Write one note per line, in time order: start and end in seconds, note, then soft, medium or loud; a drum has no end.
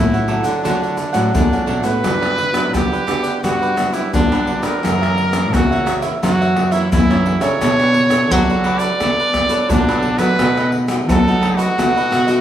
0.00 0.39 A2 medium
0.00 0.61 A2 medium
0.00 0.22 F#3 medium
0.00 0.23 A3 medium
0.00 0.23 C#4 medium
0.00 0.45 E4 medium
0.00 0.10 A4 medium
0.13 0.27 A4 soft
0.13 0.28 C#5 soft
0.13 0.28 F#5 soft
0.13 pandeiro soft
0.13 shaker soft
0.28 0.58 F#3 medium
0.28 0.58 A3 medium
0.28 0.59 C#4 medium
0.28 0.45 D4 medium
0.28 0.43 A4 medium
0.28 0.43 C#5 medium
0.28 0.42 F#5 medium
0.28 pandeiro medium
0.43 0.60 D3 medium
0.43 1.30 D4 medium
0.43 0.62 A4 soft
0.43 0.62 C#5 soft
0.43 0.61 F#5 soft
0.43 pandeiro medium
0.43 shaker medium
0.63 1.31 D3 medium
0.63 1.10 D3 medium
0.63 0.97 F#3 medium
0.63 0.98 A3 medium
0.63 0.80 D4 medium
0.63 0.81 A4 medium
0.63 0.81 C#5 medium
0.63 0.81 F#5 medium
0.63 pandeiro medium
0.63 shaker medium
0.63 surdo medium
0.82 0.96 A4 soft
0.82 0.97 C#5 soft
0.82 0.97 F#5 medium
0.82 pandeiro soft
0.82 shaker soft
0.97 muted cavaquinho stroke soft
0.97 pandeiro medium
0.97 shaker medium
1.13 1.31 A2 medium
1.13 1.62 F#3 medium
1.13 1.62 A3 medium
1.13 1.63 C#4 medium
1.13 1.49 A4 medium
1.13 1.49 C#5 medium
1.13 1.49 F#5 medium
1.13 pandeiro medium
1.13 shaker medium
1.33 2.01 A2 medium
1.33 1.49 D3 medium
1.33 1.84 D4 medium
1.33 pandeiro medium
1.33 shaker medium
1.33 surdo loud
1.52 1.67 C#3 medium
1.52 1.66 A4 soft
1.52 1.66 C#5 soft
1.52 1.66 F#5 soft
1.52 pandeiro soft
1.52 shaker soft
1.66 1.83 B2 medium
1.66 1.89 F#3 medium
1.66 1.89 A3 medium
1.66 1.89 C#4 medium
1.66 1.84 D4 medium
1.66 1.83 A4 medium
1.66 1.82 C#5 medium
1.66 1.81 F#5 medium
1.66 pandeiro medium
1.82 2.01 A2 medium
1.82 2.02 A4 soft
1.82 2.76 B4 loud
1.82 2.01 C#5 soft
1.82 2.01 F#5 soft
1.82 pandeiro medium
1.82 shaker medium
2.03 2.70 G2 medium
2.03 2.74 G2 medium
2.03 2.36 F#3 medium
2.03 2.37 B3 medium
2.03 2.37 D4 medium
2.03 2.20 F#4 soft
2.03 2.20 G4 medium
2.03 2.21 B4 soft
2.03 2.20 D5 soft
2.03 pandeiro medium
2.03 tamborim medium
2.03 shaker medium
2.03 surdo medium
2.21 2.36 G4 medium
2.21 2.36 B4 medium
2.21 2.36 D5 medium
2.21 pandeiro soft
2.21 tamborim medium
2.21 shaker soft
2.37 muted cavaquinho stroke soft
2.37 pandeiro medium
2.52 3.02 F#3 medium
2.52 3.02 B3 medium
2.52 3.02 D4 medium
2.52 pandeiro medium
2.52 tamborim medium
2.52 shaker medium
2.74 3.40 D3 medium
2.74 3.33 D3 medium
2.74 2.90 F#4 soft
2.74 3.43 G4 loud
2.74 2.91 G4 soft
2.74 2.91 B4 medium
2.74 2.91 D5 soft
2.74 pandeiro medium
2.74 tamborim medium
2.74 shaker medium
2.74 surdo medium
2.92 3.06 G4 medium
2.92 3.06 B4 medium
2.92 3.07 D5 medium
2.92 pandeiro soft
2.92 shaker soft
3.07 3.72 B3 medium
3.07 3.73 D4 medium
3.07 3.24 F#4 medium
3.07 3.23 G4 medium
3.07 3.22 B4 medium
3.07 3.21 D5 medium
3.07 pandeiro medium
3.07 tamborim medium
3.07 shaker medium
3.23 3.41 G4 medium
3.23 3.41 B4 medium
3.23 3.41 D5 medium
3.23 pandeiro medium
3.23 shaker medium
3.42 4.09 G2 medium
3.42 4.14 G3 loud
3.42 3.60 F#4 soft
3.42 3.95 F#4 medium
3.42 3.60 G4 soft
3.42 3.60 B4 soft
3.42 3.61 D5 medium
3.42 pandeiro medium
3.42 tamborim medium
3.42 shaker medium
3.42 surdo medium
3.62 3.76 G4 medium
3.62 3.76 B4 medium
3.62 3.77 D5 medium
3.62 pandeiro soft
3.62 shaker soft
3.76 4.07 F#3 medium
3.76 4.07 B3 soft
3.76 4.07 D4 medium
3.76 muted cavaquinho stroke soft
3.76 pandeiro medium
3.76 tamborim medium
3.76 shaker medium
3.92 4.12 E4 medium
3.92 4.28 G4 medium
3.92 4.28 B4 medium
3.92 4.28 D5 medium
3.92 pandeiro medium
3.92 shaker medium
4.13 4.58 G2 medium
4.13 4.80 D3 medium
4.13 4.25 F#3 medium
4.13 4.25 B3 medium
4.13 4.26 D4 medium
4.13 4.65 D4 medium
4.13 pandeiro medium
4.13 shaker medium
4.13 surdo loud
4.32 4.79 F#3 medium
4.32 4.79 B3 medium
4.32 4.79 D4 medium
4.32 4.46 G4 medium
4.32 4.46 B4 medium
4.32 4.47 D5 medium
4.32 pandeiro soft
4.32 tamborim medium
4.32 shaker soft
4.46 4.63 F#4 medium
4.46 4.63 G4 soft
4.46 4.62 B4 medium
4.46 4.61 D5 medium
4.46 pandeiro medium
4.62 4.79 D3 medium
4.62 4.81 G4 medium
4.62 5.55 A#4 loud
4.62 4.81 B4 medium
4.62 4.80 D5 medium
4.62 pandeiro medium
4.62 tamborim medium
4.62 shaker medium
4.82 5.49 F#2 medium
4.82 5.53 F#2 medium
4.82 5.16 E3 medium
4.82 5.16 A#3 medium
4.82 5.16 C#4 medium
4.82 4.99 F#4 soft
4.82 4.99 A#4 medium
4.82 5.00 C#5 medium
4.82 5.00 E5 medium
4.82 pandeiro medium
4.82 tamborim medium
4.82 shaker medium
4.82 surdo medium
5.01 5.15 A#4 soft
5.01 5.16 C#5 medium
5.01 5.16 E5 medium
5.01 pandeiro soft
5.01 tamborim medium
5.01 shaker soft
5.16 muted cavaquinho stroke soft
5.16 pandeiro medium
5.31 5.63 E3 medium
5.31 5.63 A#3 medium
5.31 5.63 C#4 medium
5.31 pandeiro medium
5.31 tamborim medium
5.31 shaker medium
5.53 6.12 C#3 medium
5.53 6.19 C#3 medium
5.53 5.69 F#4 soft
5.53 5.96 F#4 medium
5.53 5.70 A#4 soft
5.53 5.70 C#5 soft
5.53 5.69 E5 soft
5.53 pandeiro medium
5.53 tamborim medium
5.53 shaker medium
5.53 surdo medium
5.71 6.17 E3 medium
5.71 6.18 A#3 medium
5.71 6.18 C#4 medium
5.71 5.85 A#4 medium
5.71 5.85 C#5 medium
5.71 5.86 E5 medium
5.71 pandeiro soft
5.71 shaker soft
5.86 6.03 F#4 medium
5.86 6.03 A#4 medium
5.86 6.02 C#5 medium
5.86 6.01 E5 medium
5.86 pandeiro medium
5.86 tamborim medium
5.86 shaker medium
6.02 6.21 A#4 medium
6.02 6.20 C#5 medium
6.02 6.20 E5 medium
6.02 pandeiro medium
6.02 shaker medium
6.22 6.89 F#2 medium
6.22 6.55 E3 medium
6.22 6.92 F#3 loud
6.22 6.55 A#3 medium
6.22 6.56 C#4 medium
6.22 6.39 F#4 medium
6.22 6.74 F#4 loud
6.22 6.39 A#4 soft
6.22 6.39 C#5 medium
6.22 6.40 E5 medium
6.22 pandeiro medium
6.22 tamborim medium
6.22 shaker medium
6.22 surdo medium
6.41 6.55 A#4 medium
6.41 6.55 C#5 medium
6.41 6.56 E5 medium
6.41 pandeiro soft
6.41 shaker soft
6.56 muted cavaquinho stroke soft
6.56 pandeiro medium
6.56 tamborim medium
6.71 7.02 E3 medium
6.71 7.02 A#3 medium
6.71 7.02 C#4 medium
6.71 6.91 E4 medium
6.71 7.07 A#4 medium
6.71 7.07 C#5 medium
6.71 7.07 E5 medium
6.71 pandeiro medium
6.71 shaker medium
6.92 7.37 F#2 medium
6.92 7.58 C#3 medium
6.92 7.41 E4 medium
6.92 pandeiro medium
6.92 shaker medium
6.92 surdo loud
7.10 7.39 E3 medium
7.10 7.39 A#3 medium
7.10 7.39 C#4 medium
7.10 7.25 A#4 medium
7.10 7.25 C#5 medium
7.10 7.26 E5 medium
7.10 pandeiro soft
7.10 tamborim medium
7.10 shaker soft
7.25 7.42 F#4 soft
7.25 7.42 A#4 medium
7.25 7.41 C#5 medium
7.25 7.40 E5 soft
7.25 pandeiro medium
7.40 7.57 C#3 medium
7.40 8.06 D4 medium
7.40 8.06 A4 medium
7.40 7.60 A#4 medium
7.40 8.07 C#5 medium
7.40 7.59 C#5 medium
7.40 8.33 C#5 loud
7.40 7.59 E5 medium
7.40 pandeiro medium
7.40 tamborim medium
7.40 shaker medium
7.61 8.31 B2 medium
7.61 8.28 B3 medium
7.61 7.78 D4 medium
7.61 7.78 A4 soft
7.61 7.79 B4 medium
7.61 7.79 D5 medium
7.61 pandeiro medium
7.61 tamborim medium
7.61 shaker medium
7.61 surdo medium
7.80 7.95 A4 medium
7.80 7.95 B4 medium
7.80 7.96 D5 medium
7.80 pandeiro soft
7.80 tamborim medium
7.80 shaker soft
7.94 muted cavaquinho stroke soft
7.94 pandeiro medium
8.10 8.41 D4 medium
8.10 8.41 A4 medium
8.10 8.42 C#5 medium
8.10 pandeiro medium
8.10 tamborim medium
8.10 shaker medium
8.31 8.97 F#3 medium
8.31 8.90 F#3 medium
8.31 8.47 D4 soft
8.31 8.80 F#4 loud
8.31 8.48 A4 soft
8.31 8.48 B4 soft
8.31 8.48 D5 medium
8.31 pandeiro medium
8.31 tamborim medium
8.31 shaker medium
8.31 surdo medium
8.49 8.95 D4 medium
8.49 8.96 A4 medium
8.49 8.64 A4 medium
8.49 8.65 B4 medium
8.49 8.96 C#5 medium
8.49 8.65 D5 medium
8.49 pandeiro soft
8.49 shaker soft
8.64 8.81 D4 medium
8.64 8.81 A4 medium
8.64 8.81 B4 medium
8.64 8.80 D5 medium
8.64 pandeiro medium
8.64 tamborim medium
8.79 8.99 A4 medium
8.79 8.99 B4 medium
8.79 9.72 D5 loud
8.79 8.98 D5 medium
8.79 pandeiro medium
8.79 shaker medium
9.00 9.66 B3 medium
9.00 9.70 B3 medium
9.00 9.47 D4 medium
9.00 9.17 D4 medium
9.00 9.47 A4 medium
9.00 9.17 A4 medium
9.00 9.18 B4 soft
9.00 9.18 D5 medium
9.00 pandeiro medium
9.00 tamborim medium
9.00 shaker medium
9.00 surdo medium
9.19 9.34 A4 medium
9.19 9.34 B4 medium
9.19 9.34 D5 medium
9.19 pandeiro soft
9.19 shaker soft
9.34 muted cavaquinho stroke soft
9.34 pandeiro medium
9.34 tamborim medium
9.34 shaker medium
9.34 surdo medium
9.49 9.80 D4 medium
9.49 9.80 A4 medium
9.49 9.85 A4 medium
9.49 9.85 B4 medium
9.49 9.81 C#5 medium
9.49 9.85 D5 medium
9.49 pandeiro medium
9.49 shaker medium
9.70 10.14 B2 medium
9.70 10.36 F#3 medium
9.70 10.20 D4 medium
9.70 pandeiro medium
9.70 shaker medium
9.70 surdo loud
9.87 10.17 D4 medium
9.87 10.17 A4 medium
9.87 10.02 A4 soft
9.87 10.02 B4 medium
9.87 10.17 C#5 medium
9.87 10.03 D5 medium
9.87 pandeiro soft
9.87 tamborim medium
9.87 shaker soft
10.02 10.20 D4 soft
10.02 10.19 A4 soft
10.02 10.18 B4 soft
10.02 10.18 D5 soft
10.02 pandeiro medium
10.18 10.35 F#3 medium
10.18 10.84 A3 medium
10.18 10.85 D#4 medium
10.18 10.85 F#4 medium
10.18 10.37 A4 medium
10.18 10.80 B4 loud
10.18 10.37 B4 medium
10.18 10.36 D5 medium
10.18 pandeiro medium
10.18 tamborim medium
10.18 shaker medium
10.39 11.05 B2 medium
10.39 11.09 B2 medium
10.39 10.56 D#4 soft
10.39 10.56 A4 soft
10.39 10.56 B4 soft
10.39 10.57 D#5 soft
10.39 pandeiro medium
10.39 tamborim medium
10.39 shaker medium
10.39 surdo medium
10.57 10.72 A4 medium
10.57 10.72 B4 medium
10.57 10.73 D#5 medium
10.57 pandeiro soft
10.57 tamborim medium
10.57 shaker soft
10.72 muted cavaquinho stroke soft
10.72 pandeiro medium
10.88 11.19 A3 medium
10.88 11.19 D#4 medium
10.88 11.20 F#4 medium
10.88 pandeiro medium
10.88 tamborim medium
10.88 shaker medium
11.08 11.68 F#3 medium
11.08 11.75 F#3 medium
11.08 11.25 D#4 soft
11.08 11.59 A4 loud
11.08 11.25 A4 soft
11.08 11.26 B4 soft
11.08 11.26 D#5 soft
11.08 pandeiro medium
11.08 tamborim medium
11.08 shaker medium
11.08 surdo loud
11.27 11.73 A3 medium
11.27 11.74 D#4 medium
11.27 11.74 F#4 medium
11.27 11.41 A4 medium
11.27 11.41 B4 medium
11.27 11.42 D#5 medium
11.27 pandeiro soft
11.27 shaker soft
11.41 11.59 D#4 medium
11.41 11.58 A4 medium
11.41 11.57 B4 medium
11.41 11.56 D#5 medium
11.41 pandeiro medium
11.41 tamborim medium
11.57 12.41 F#4 loud
11.57 11.76 A4 medium
11.57 11.76 B4 medium
11.57 11.75 D#5 medium
11.57 pandeiro medium
11.57 shaker medium
11.77 12.41 B2 medium
11.77 12.11 A3 medium
11.77 12.13 B3 medium
11.77 11.94 D#4 medium
11.77 12.11 D#4 medium
11.77 12.12 F#4 medium
11.77 11.94 A4 medium
11.77 11.94 B4 medium
11.77 11.95 D#5 soft
11.77 pandeiro medium
11.77 tamborim medium
11.77 shaker medium
11.77 surdo medium
11.96 12.11 A4 medium
11.96 12.11 B4 medium
11.96 12.11 D#5 medium
11.96 pandeiro soft
11.96 shaker soft
12.11 12.41 B2 medium
12.11 muted cavaquinho stroke soft
12.11 pandeiro medium
12.11 tamborim medium
12.11 shaker medium
12.27 12.41 A3 medium
12.27 12.41 D#4 medium
12.27 12.41 F#4 medium
12.27 12.41 A4 soft
12.27 12.41 B4 medium
12.27 12.41 D#5 medium
12.27 pandeiro medium
12.27 shaker medium